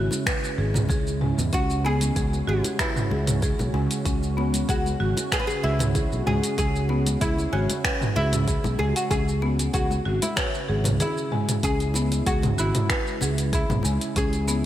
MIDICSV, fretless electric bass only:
0, 0, Header, 1, 2, 480
1, 0, Start_track
1, 0, Key_signature, 4, "minor"
1, 0, Tempo, 631579
1, 1163, Time_signature, 4, 2, 24, 8
1, 11138, End_track
2, 0, Start_track
2, 0, Title_t, "Fretless electric bass"
2, 0, Program_c, 0, 35
2, 442, Note_on_c, 0, 32, 96
2, 573, Note_on_c, 0, 37, 65
2, 584, Note_off_c, 0, 32, 0
2, 998, Note_off_c, 0, 37, 0
2, 1051, Note_on_c, 0, 40, 84
2, 1134, Note_off_c, 0, 40, 0
2, 1162, Note_on_c, 0, 37, 93
2, 1595, Note_off_c, 0, 37, 0
2, 1642, Note_on_c, 0, 37, 93
2, 1824, Note_off_c, 0, 37, 0
2, 1882, Note_on_c, 0, 32, 85
2, 1977, Note_off_c, 0, 32, 0
2, 2360, Note_on_c, 0, 37, 72
2, 2676, Note_off_c, 0, 37, 0
2, 2731, Note_on_c, 0, 35, 82
2, 2813, Note_off_c, 0, 35, 0
2, 2838, Note_on_c, 0, 37, 97
2, 2935, Note_off_c, 0, 37, 0
2, 3081, Note_on_c, 0, 37, 102
2, 3515, Note_off_c, 0, 37, 0
2, 3564, Note_on_c, 0, 37, 99
2, 3745, Note_off_c, 0, 37, 0
2, 3802, Note_on_c, 0, 32, 87
2, 3897, Note_off_c, 0, 32, 0
2, 4284, Note_on_c, 0, 37, 74
2, 4598, Note_off_c, 0, 37, 0
2, 4656, Note_on_c, 0, 35, 81
2, 4736, Note_off_c, 0, 35, 0
2, 4763, Note_on_c, 0, 37, 90
2, 4857, Note_off_c, 0, 37, 0
2, 5001, Note_on_c, 0, 37, 96
2, 5435, Note_off_c, 0, 37, 0
2, 5483, Note_on_c, 0, 37, 100
2, 5664, Note_off_c, 0, 37, 0
2, 5723, Note_on_c, 0, 32, 91
2, 5817, Note_off_c, 0, 32, 0
2, 6203, Note_on_c, 0, 37, 75
2, 6517, Note_off_c, 0, 37, 0
2, 6570, Note_on_c, 0, 35, 87
2, 6653, Note_off_c, 0, 35, 0
2, 6681, Note_on_c, 0, 37, 102
2, 6776, Note_off_c, 0, 37, 0
2, 6922, Note_on_c, 0, 37, 101
2, 7355, Note_off_c, 0, 37, 0
2, 7402, Note_on_c, 0, 37, 99
2, 7584, Note_off_c, 0, 37, 0
2, 7644, Note_on_c, 0, 32, 86
2, 7738, Note_off_c, 0, 32, 0
2, 8127, Note_on_c, 0, 32, 90
2, 8253, Note_on_c, 0, 37, 73
2, 8264, Note_off_c, 0, 32, 0
2, 8364, Note_off_c, 0, 37, 0
2, 8841, Note_on_c, 0, 37, 104
2, 9275, Note_off_c, 0, 37, 0
2, 9321, Note_on_c, 0, 37, 102
2, 9503, Note_off_c, 0, 37, 0
2, 9560, Note_on_c, 0, 32, 92
2, 9656, Note_off_c, 0, 32, 0
2, 10045, Note_on_c, 0, 37, 78
2, 10358, Note_off_c, 0, 37, 0
2, 10409, Note_on_c, 0, 35, 82
2, 10492, Note_off_c, 0, 35, 0
2, 10520, Note_on_c, 0, 37, 97
2, 10616, Note_off_c, 0, 37, 0
2, 10761, Note_on_c, 0, 37, 101
2, 11138, Note_off_c, 0, 37, 0
2, 11138, End_track
0, 0, End_of_file